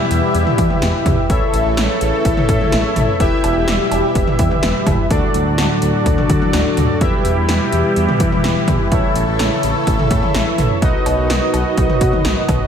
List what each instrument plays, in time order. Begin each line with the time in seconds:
Already playing: analog synth pad B2 E3 G3 E4 G4, analog polysynth E4 G4 B4 E5
0.11 analog synth bass E2, closed hi-hat
0.34 analog synth bass E2, closed hi-hat
0.47 mid tom
0.58 analog synth bass E3, kick, closed hi-hat
0.70 mid tom
0.82 analog synth bass E2, snare, closed hi-hat
1.06 analog synth bass E2, kick, closed hi-hat, mid tom
1.30 analog synth bass A1, analog synth pad C#3 A3 E4 A4, analog polysynth E4 A4 C#5 E5, kick, closed hi-hat
1.54 analog synth bass A1, closed hi-hat
1.65 analog synth bass A1
1.77 analog synth bass A1, snare, closed hi-hat
2.01 analog synth bass A1, closed hi-hat
2.25 analog synth bass A1, kick, closed hi-hat
2.37 mid tom
2.49 analog synth bass A2, kick, closed hi-hat
2.61 mid tom
2.72 analog synth bass A1, snare, closed hi-hat
2.96 analog synth bass A1, closed hi-hat, mid tom
3.20 analog synth bass E1, analog synth pad B2 E3 G3 G4, analog polysynth E4 G4 B4 E5, kick, closed hi-hat
3.44 analog synth bass E1, closed hi-hat, cowbell
3.56 analog synth bass E1
3.68 analog synth bass E1, snare, closed hi-hat
3.91 analog synth bass E1, closed hi-hat, cowbell
4.15 analog synth bass E1, kick, closed hi-hat
4.28 mid tom
4.39 analog synth bass E2, kick, closed hi-hat
4.51 mid tom
4.63 analog synth bass E1, snare, closed hi-hat
4.86 analog synth bass E1, kick, closed hi-hat, mid tom, cowbell
5.10 analog synth bass D2, analog synth pad A2 D3 F#3 D4 F#4, analog polysynth D4 F#4 A4 D5, kick, closed hi-hat
5.34 analog synth bass D2, closed hi-hat
5.46 analog synth bass D2
5.58 analog synth bass D2, snare, closed hi-hat
5.82 analog synth bass D2, closed hi-hat
6.06 analog synth bass D2, kick, closed hi-hat
6.18 mid tom
6.30 analog synth bass D3, kick, closed hi-hat
6.42 mid tom
6.53 analog synth bass D2, snare, closed hi-hat
6.77 analog synth bass D2, closed hi-hat, mid tom
7.01 analog synth bass E2, analog synth pad B2 E3 G3 E4 G4, analog polysynth E4 G4 B4 E5, kick, closed hi-hat
7.25 analog synth bass E2, closed hi-hat
7.37 analog synth bass E2
7.49 analog synth bass E2, snare, closed hi-hat
7.72 analog synth bass E2, closed hi-hat
7.96 analog synth bass E2, closed hi-hat
8.09 mid tom
8.20 analog synth bass E3, kick, closed hi-hat
8.32 mid tom
8.44 analog synth bass E2, snare, closed hi-hat
8.68 analog synth bass E2, kick, closed hi-hat, mid tom
8.92 analog synth bass A1, analog synth pad C#3 A3 A4, analog polysynth E4 A4 C#5 E5, kick, closed hi-hat
9.15 analog synth bass A1, closed hi-hat
9.27 analog synth bass A1
9.39 analog synth bass A1, snare, closed hi-hat
9.63 analog synth bass A1, closed hi-hat
9.87 analog synth bass A1, kick, closed hi-hat
9.99 mid tom
10.11 analog synth bass A2, kick, closed hi-hat
10.23 mid tom
10.34 analog synth bass A1, snare, closed hi-hat
10.58 analog synth bass A1, closed hi-hat, mid tom
10.82 analog synth bass B1, analog synth pad B2 D#3 F#3 D#4 F#4, analog polysynth D#4 F#4 B4 D#5, kick, closed hi-hat
11.06 analog synth bass B1, closed hi-hat, cowbell
11.18 analog synth bass B1
11.30 analog synth bass B1, snare, closed hi-hat
11.54 analog synth bass B1, closed hi-hat, cowbell
11.78 analog synth bass B1, kick, closed hi-hat
11.90 mid tom
12.01 analog synth bass B2, kick, closed hi-hat
12.13 mid tom
12.25 analog synth bass B1, snare, closed hi-hat
12.48 analog synth bass B1, kick, closed hi-hat, mid tom, cowbell